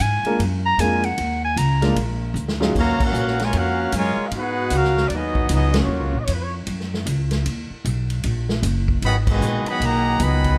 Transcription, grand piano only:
0.26 0.38 G#3 medium
0.26 0.38 A#3 medium
0.26 0.39 D4 medium
0.26 0.39 F4 medium
0.26 0.39 A#4 medium
0.79 1.01 G#3 medium
0.79 1.01 A#3 medium
0.79 1.02 D4 medium
0.79 1.02 F4 medium
0.79 1.02 A#4 medium
1.81 1.94 G#3 medium
1.81 1.95 A#3 medium
1.81 1.95 D4 medium
1.81 1.95 F4 medium
1.81 1.95 A#4 medium
2.60 2.73 F#3 medium
2.60 2.73 C#4 medium
2.60 2.73 D#4 medium
2.60 2.73 F4 medium
2.60 2.73 G#4 medium

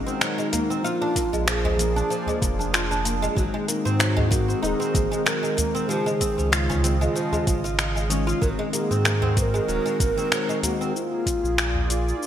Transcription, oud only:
0.07 0.20 C4 loud
0.21 0.37 F#3 loud
0.38 0.46 G#3 loud
0.53 0.68 A#3 loud
0.70 0.83 C4 medium
0.84 0.94 F4 loud
1.02 1.15 D4 loud
1.16 1.26 A#3 medium
1.33 1.46 G#3 loud
1.47 1.63 F3 loud
1.65 1.78 G#3 loud
1.79 1.94 A#3 medium
1.96 2.10 D4 loud
2.10 2.26 F3 loud
2.28 2.36 G#3 loud
2.42 2.58 A#3 loud
2.59 2.72 D4 medium
2.74 2.83 F4 loud
2.91 3.05 D4 medium
3.05 3.15 A#3 medium
3.22 3.35 G#3 loud
3.36 3.52 F#3 loud
3.54 3.67 G#3 loud
3.68 3.84 A#3 medium
3.85 3.99 C4 loud
3.99 4.15 F#3 loud
4.17 4.25 G#3 loud
4.31 4.47 A#3 loud
4.48 4.61 C4 medium
4.63 4.73 D#4 loud
4.80 4.94 C4 loud
4.94 5.04 A#3 medium
5.12 5.25 G#3 loud
5.26 5.42 F#3 loud
5.43 5.56 G#3 medium
5.57 5.73 A#3 medium
5.75 5.88 C4 loud
5.89 6.05 F3 loud
6.06 6.15 G#3 loud
6.21 6.36 C4 medium
6.38 6.51 C#4 medium
6.52 6.62 F4 loud
6.70 6.83 C#4 loud
6.84 6.94 C4 medium
7.01 7.14 G#3 loud
7.15 7.31 F3 loud
7.33 7.46 G#3 loud
7.47 7.64 G#3 medium
7.64 7.77 F4 loud
7.79 7.95 F4 medium
7.96 8.10 G#3 medium
8.10 8.27 C#4 medium
8.27 8.41 F4 loud
8.42 8.57 F#3 loud
8.59 8.67 G#3 loud
8.73 8.89 A#3 loud
8.91 9.04 C4 medium
9.05 9.21 A#3 medium
9.22 9.36 C4 loud
9.37 9.47 A#3 medium
9.54 9.67 G#3 loud
9.68 9.84 F#3 loud
9.86 9.98 G#3 loud
10.00 10.16 A#3 medium
10.18 10.31 C4 loud
10.32 10.47 F#3 loud
10.49 10.57 G#3 loud
10.64 10.79 A#3 medium
10.81 10.94 C4 medium

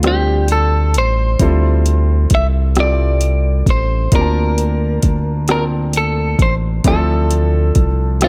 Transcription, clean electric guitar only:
0.07 0.48 G4 medium
0.52 0.97 A4 medium
0.98 2.34 C5 medium
2.35 2.46 E5 medium
2.80 3.65 D5 medium
3.70 4.15 C5 medium
4.15 5.46 A#4 medium
5.51 5.63 A#4 medium
5.97 6.42 A4 medium
6.42 6.54 C5 medium
6.88 8.19 A4 medium
8.24 8.28 F4 medium

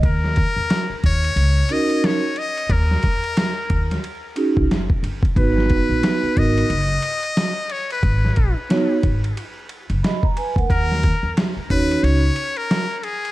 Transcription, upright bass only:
0.03 0.44 D#2 loud
0.56 0.67 E2 medium
0.90 muted upright bass stroke soft
1.04 1.29 D#2 medium
1.36 1.62 C#2 loud
2.69 2.95 D#2 loud
3.04 3.19 E2 medium
3.70 3.95 D#2 loud
4.57 4.70 C#2 medium
4.70 4.95 F#1 medium
5.03 5.28 G1 medium
5.36 5.77 G#1 loud
5.89 6.00 A#1 medium
6.23 muted upright bass stroke soft
6.37 6.62 G#1 medium
6.70 6.95 F#1 loud
8.03 8.28 G#1 loud
8.37 8.52 A#1 medium
9.03 9.29 G#1 medium
9.90 10.00 F#1 medium
10.56 10.66 D2 medium
10.70 11.11 D#2 loud
11.23 11.33 E2 medium
11.57 muted upright bass stroke soft
11.70 11.95 D#2 medium
12.03 12.28 C#2 loud

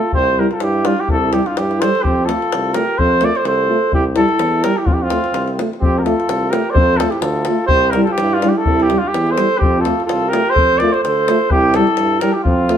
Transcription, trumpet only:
0.00 0.14 A4 medium
0.15 0.41 C5 loud
0.39 0.49 A#4 medium
0.49 0.64 A4 medium
0.49 0.54 A#4 medium
0.63 0.87 G4 medium
0.86 1.02 F4 medium
1.00 1.10 G4 medium
1.11 1.34 A4 medium
1.33 1.48 G4 medium
1.46 1.59 F4 medium
1.58 1.82 G4 medium
1.80 2.04 C5 medium
2.03 2.26 G4 medium
2.25 2.75 A4 medium
2.73 3.00 A#4 medium
2.98 3.26 C5 loud
3.24 3.38 D5 medium
3.36 3.46 C5 medium
3.48 3.91 C5 medium
3.94 4.05 G4 medium
4.16 4.65 A4 medium
4.63 4.78 A#4 medium
4.77 4.88 G4 medium
4.86 4.95 F4 medium
4.93 5.04 G4 medium
5.02 5.58 F4 medium
5.81 6.00 G4 medium
5.98 6.04 A#4 medium
6.03 6.51 A4 medium
6.50 6.72 A#4 medium
6.70 6.98 C5 loud
6.70 6.74 D5 medium
6.97 7.12 A4 medium
7.10 7.23 G4 medium
7.21 7.66 A4 medium
7.67 7.92 C5 loud
7.90 8.03 A#4 medium
8.04 8.13 A4 medium
8.12 8.35 G4 loud
8.34 8.50 F4 medium
8.49 8.59 G4 medium
8.57 8.84 A4 loud
8.82 9.00 G4 medium
8.99 9.09 F4 medium
9.08 9.33 G4 medium
9.31 9.60 C5 medium
9.58 9.82 G4 medium
9.81 10.04 A4 medium
10.05 10.30 A4 medium
10.29 10.51 A#4 loud
10.50 10.80 C5 loud
10.78 10.94 D5 loud
10.93 11.02 C5 medium
11.03 11.52 C5 medium
11.51 11.77 G4 loud
11.76 12.22 A4 loud
12.20 12.35 A#4 medium
12.33 12.43 G4 medium
12.44 12.78 F4 medium

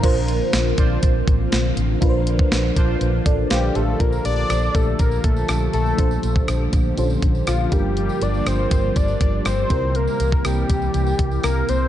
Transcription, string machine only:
0.03 3.96 D3 medium
0.03 3.96 F3 medium
0.03 3.96 A#3 medium
0.03 2.00 C4 medium
0.03 3.96 F4 medium
2.02 3.98 D4 medium
4.00 9.66 D3 medium
4.00 9.66 F3 medium
4.00 9.66 A#3 medium
4.00 5.97 F4 medium
4.00 7.68 A4 medium
5.99 7.70 G4 medium
7.72 11.88 G3 medium
7.72 9.69 F4 medium
9.70 11.88 C3 medium
9.70 11.88 E3 medium
9.70 11.88 A#3 medium
9.70 11.88 E4 medium

